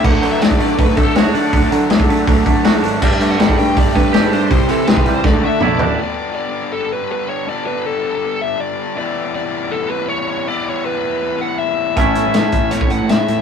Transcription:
<<
  \new Staff \with { instrumentName = "Analog synth pad" } { \time 4/4 \key g \lydian \tempo 4 = 161 << { <a' d'''>1~ | <a' d'''>1~ | <a' d'''>1 | <g' c'''>2 <fis' d'''>2 |
r1 | r1 | r1 | r1 |
r1 | } \\ { fis''1~ | fis''1 | g''1 | e''1 |
r1 | r1 | r1 | r1 |
r1 | } >> }
  \new Staff \with { instrumentName = "Lead electric guitar" } { \time 4/4 \key g \lydian fis''8. e''16 d''8 d''8 b'8 a'8 cis''8 d''8~ | d''8 r2. r8 | d''8. fis''8. g''8 d''8 b'4 c''8~ | c''8 a'8 b'8. c''16 d''8 e''8 d''4 |
d''4 d''4 a'8 b'8 b'8 cis''8 | d''8 b'8 a'4. e''8 d''4 | d''4 d''4 a'8 b'8 cis''8 cis''8 | d''8 cis''8 b'4. fis''8 e''4 |
e''4 e''4 cis''8 fis''8 e''4 | }
  \new Staff \with { instrumentName = "Distorted electric guitar" } { \time 4/4 \key g \lydian <d fis a d' fis'>8 <a d' fis'>8 <fis a d' fis'>4 <d fis a d' fis'>8 <a d' fis'>8 <fis a d' fis'>8 <a d' fis'>8 | <d fis a d' fis'>8 <a d' fis'>8 <fis a d' fis'>4 <d fis a d' fis'>8 <a d' fis'>8 <fis a d' fis'>8 <a d' fis'>8 | <g a d' g'>8 <a d' g'>8 <g a d' g'>4 <g a d' g'>8 <a d' g'>8 <g a d' g'>8 <a d' g'>8 | <c e g c' g'>8 <g c' g'>8 <e g c' g'>4 <d a d' fis'>8 <a d' fis'>8 <d a d' fis'>8 <a d' fis'>8 |
<g, d g b d'>1 | <g, d g b d'>1 | <e g b e'>1 | <e g b e'>1 |
<a, e a cis' e'>1 | }
  \new Staff \with { instrumentName = "Clean electric guitar" } { \time 4/4 \key g \lydian d8 fis8 fis8 a8 fis8 a8 fis'8 d'8 | d8 fis8 fis8 a8 fis8 a8 fis'8 d'8 | g8 a8 g8 a8 g8 a8 g'8 d'8 | c8 e8 e8 g8 d8 a8 e'8 d'8 |
r1 | r1 | r1 | r1 |
<a, e a cis' e'>1 | }
  \new Staff \with { instrumentName = "Picked electric bass" } { \clef bass \time 4/4 \key g \lydian d,8 d8 d,8 d8 d,8 d8 d,8 d8 | d,8 d8 d,8 d8 d,8 d8 d,8 gis,,8 | g,,8 g,8 g,,8 g,8 g,,8 g,8 g,,8 g,8 | c,8 c8 c,8 c,8 d,8 d8 b,,8 a,,8 |
r1 | r1 | r1 | r1 |
a,,8 a,16 a,,16 a,16 r16 a,,8 a,8 a,,16 a,16 a,,16 r16 a,16 a,,16 | }
  \new DrumStaff \with { instrumentName = "Drums" } \drummode { \time 4/4 <cymc bd>8 hho8 <hho sn>16 bd16 hho8 <hho bd>8 <hho bd>8 <hho sn>8 hho8 | <hho bd>8 hho8 <hho sn>16 bd16 hho8 <hho bd>8 <hho bd>8 <hho sn>8 hho8 | <cymc bd>8 hho8 <hho sn>16 bd16 hho8 <hho bd>8 <hho bd>8 <hho sn>8 hho8 | <hho bd>8 hho8 <hho sn>16 bd16 hho8 <bd sn>4 toml8 tomfh8 |
r4 r4 r4 r4 | r4 r4 r4 r4 | r4 r4 r4 r4 | r4 r4 r4 r4 |
<hh bd>8 hh8 <hh sn>8 <hh bd>8 hh16 bd16 hh8 <hh sn>8 hh8 | }
>>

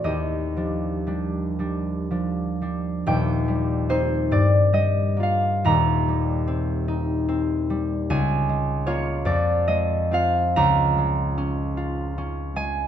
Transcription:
<<
  \new Staff \with { instrumentName = "Harp" } { \time 6/8 \key ees \major \tempo 4. = 48 << { <d'' ees''>2. | g''4 c''8 d''8 ees''8 f''8 | bes''2. | aes''4 des''8 d''8 ees''8 f''8 |
bes''2~ bes''8 aes''8 | } \\ { g'2.~ | g'2.~ | g'2. | r2. |
r2. | } >> }
  \new Staff \with { instrumentName = "Harp" } { \clef bass \time 6/8 \key ees \major ees,8 <f d'>8 <g d'>8 <g d'>8 <f d'>8 <g d'>8 | <ees,, ees,>8 g8 <c' ees'>8 g,8 g8 <bes f'>8 | <ees,, ees,>8 g8 c'8 ees'8 c'8 g8 | des,8 aes8 <bes f'>8 f,8 aes8 <c' f'>8 |
des,8 aes8 des'8 f'8 des'8 aes8 | }
>>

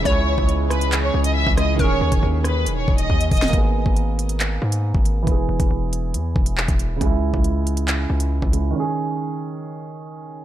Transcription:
<<
  \new Staff \with { instrumentName = "Violin section" } { \time 4/4 \key gis \minor \tempo 4 = 138 cis''4 r8 b'8. cis''8 dis''16 e''8 dis''8 | cis''4 r8 b'8. cis''8 dis''8. dis''8 | r1 | r1 |
r1 | r1 | }
  \new Staff \with { instrumentName = "Synth pluck" } { \time 4/4 \key gis \minor cis''2. r4 | ais'2 r2 | r1 | r1 |
r1 | r1 | }
  \new Staff \with { instrumentName = "Grand piano" } { \time 4/4 \key gis \minor <cis gis e'>2.~ <cis gis e'>8 <cis gis e'>8 | <dis cis' gis'>1 | <ais b gis'>1 | <e b gis'>1 |
<cis gis e'>2.~ <cis gis e'>8 <cis gis e'>8 | <dis cis' gis'>1 | }
  \new Staff \with { instrumentName = "Ambient pad" } { \clef bass \time 4/4 \key gis \minor << { <cis' gis'>1~ | <cis' gis'>1 | r1 | r1 |
r1 | r1 | } \\ { <e gis>1 | <ais, dis>1 | r1 | r1 |
r1 | r1 | } >> }
  \new Staff \with { instrumentName = "808-style bass" } { \clef bass \time 4/4 \key gis \minor cis,8. cis,4.~ cis,16 cis,8. cis,8. | dis,,8 dis,16 dis,,16 dis,4 e,,8 dis,,8 dis,8 dis,,8 | gis,,8. gis,,4.~ gis,,16 gis,8. gis,,8. | e,,8 e,,16 e,,16 e,,4 e,8 e,,8. e,,8 dis,,16 |
cis,8. cis,4.~ cis,16 cis,8. cis,8. | r1 | }
  \new DrumStaff \with { instrumentName = "Drums" } \drummode { \time 4/4 <hh bd>8. bd16 hh8 <hh ss>16 hh16 <hc hh>8. hh16 r16 bd16 <hh ss>8 | <hh bd>8. <hh bd>16 r8 <hh ss>8 hh8 bd16 hh16 bd16 hh16 <hh hho bd>32 hh32 <hh sn>32 hh32 | <hh bd>8. bd16 hh8 hh16 hh16 <hc hh>8. hh16 r16 bd16 hh8 | <hh bd>8. <hh bd>16 r8 hh8 hh8 bd16 hh16 hc16 <hh bd>16 hh8 |
<hh bd>8. bd16 hh8 hh16 hh16 <hc hh>8. hh16 r16 bd16 hh8 | r4 r4 r4 r4 | }
>>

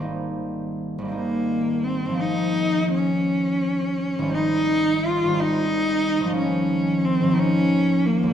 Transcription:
<<
  \new Staff \with { instrumentName = "Cello" } { \time 12/8 \key aes \major \tempo 4. = 57 r4. bes4 c'8 ees'4 des'2 | ees'4 f'8 ees'4. des'4 c'8 des'4 bes8 | }
  \new Staff \with { instrumentName = "Harp" } { \time 12/8 \key aes \major <aes,, g bes c' ees'>4. <aes,, g bes c' ees'>4. <aes,, f bes c' ees'>2. | <aes,, g c' ees'>4. <aes,, g c' ees'>4. <aes,, f bes des' ees'>4. <aes,, f bes des' ees'>4. | }
>>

